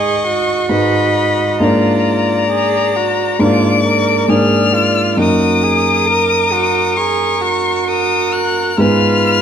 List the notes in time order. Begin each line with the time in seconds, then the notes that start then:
Already playing: G#2 G#3 D#4 G#4 B4 D#5 C#6
0.24 F#4
0.69 G#2 G#3 D#4 B4 D#5 B5
1.60 G#2 A#3 D4 F4 A#4 D5 A#5
2.50 G#4
2.97 F#4
3.39 G#2 A#3 D4 F4 A#4 D5 D6
3.86 A#4
4.28 G#2 A#3 D4 G#4 A#4 D5 F6
4.74 F4
5.17 F#2 A#3 D#4 F#4 A#4 D#6
5.63 G#4
6.08 A#4
6.53 F#4
6.97 G#4 C#6
7.42 F#4
7.88 A#4 D#6
8.33 F#6
8.78 G#2 G#3 B3 F4 B4 F6